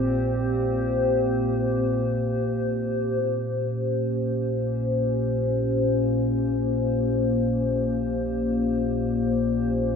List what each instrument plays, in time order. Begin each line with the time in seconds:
Already playing: sub bass A#1, ambient pad A#2 A#3 C4 G4 C5
3.23 sub bass A#1
3.49 ambient pad C#4
9.77 ambient pad C4